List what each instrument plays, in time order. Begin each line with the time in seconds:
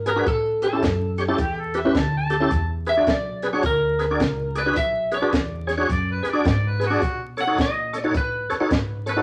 Already playing: upright bass G#2
0.06 tonewheel organ G#4 B4, electric slide guitar A#4, snare, closed hi-hat
0.16 tonewheel organ D4 F#4 G#4 B4
0.26 upright bass A2, electric slide guitar A4, kick, snare, closed hi-hat
0.62 tonewheel organ G4 B4, electric slide guitar A4, snare, closed hi-hat
0.72 tonewheel organ C#4 E4 G4 A4
0.83 upright bass F#2, kick, snare, closed hi-hat
1.18 tonewheel organ G4 C#5, snare, closed hi-hat
1.28 tonewheel organ C#4 E4 G4 A4
1.38 upright bass E2, harmonica G4, kick, snare, closed hi-hat
1.60 harmonica A4
1.74 tonewheel organ G4 B4, snare, closed hi-hat
1.80 harmonica E5
1.85 tonewheel organ C#4 E4 G4 B4
1.95 upright bass D2, kick, snare, closed hi-hat
1.99 harmonica A5
2.17 harmonica A5
2.30 tonewheel organ G4 A4, snare, closed hi-hat
2.40 tonewheel organ C#4 E4 G4 A4
2.51 upright bass E2, kick, snare, closed hi-hat
2.87 tonewheel organ G#4 B4, electric slide guitar E5, snare, closed hi-hat
2.97 tonewheel organ D4 F#4 G#4 D5
3.07 upright bass B1, electric slide guitar D5, kick, snare, closed hi-hat
3.43 tonewheel organ G#4 B4, snare, closed hi-hat
3.53 tonewheel organ D4 F#4 G#4 C#5
3.63 upright bass D2, electric slide guitar A#4, kick, snare, closed hi-hat
3.99 tonewheel organ G#4 B4, snare, closed hi-hat
4.11 tonewheel organ D4 F#4 G#4 D5
4.20 upright bass C#2, kick, snare, closed hi-hat
4.55 tonewheel organ G#4 D5, electric slide guitar B4, snare, closed hi-hat
4.66 tonewheel organ D4 F#4 G#4 B4
4.76 upright bass B1, electric slide guitar E5, kick, snare, closed hi-hat
5.12 tonewheel organ G#4 B4, electric slide guitar D5, snare, closed hi-hat
5.22 tonewheel organ D4 F#4 G#4 B4
5.33 upright bass E2, kick, snare, closed hi-hat
5.67 tonewheel organ G#4 C#5, snare, closed hi-hat
5.77 tonewheel organ D4 F#4 G#4 C#5
5.89 upright bass F#2, harmonica D5, kick, snare, closed hi-hat
6.12 harmonica B4
6.23 tonewheel organ G#4 B4, snare, closed hi-hat
6.30 tonewheel organ D4 F#4 G#4 D5, harmonica D5
6.45 upright bass G#2, kick, snare, closed hi-hat
6.50 harmonica D5
6.68 harmonica B4
6.80 tonewheel organ G#4 B4, snare, closed hi-hat
6.87 tonewheel organ D4 F#4 G#4 D5, harmonica F#4
7.02 upright bass B2, kick, snare, closed hi-hat
7.37 tonewheel organ A4 C#5, electric slide guitar F#5, snare, closed hi-hat
7.47 tonewheel organ D#4 F#4 A4 C#5
7.58 upright bass A#2, electric slide guitar D#5, kick, snare, closed hi-hat
7.93 tonewheel organ A4 C#5, snare, closed hi-hat
8.04 tonewheel organ D#4 F#4 A4 C#5, electric slide guitar C#5
8.15 upright bass A2, electric slide guitar B4, kick, snare, closed hi-hat
8.50 tonewheel organ A4 C#5, muted upright bass stroke, snare, closed hi-hat
8.60 tonewheel organ D#4 F#4 A4 C#5
8.71 upright bass G#2, kick, snare, closed hi-hat
9.06 tonewheel organ A4 C#5, electric slide guitar B4, snare, closed hi-hat
9.16 tonewheel organ D#4 F#4 A4 C#5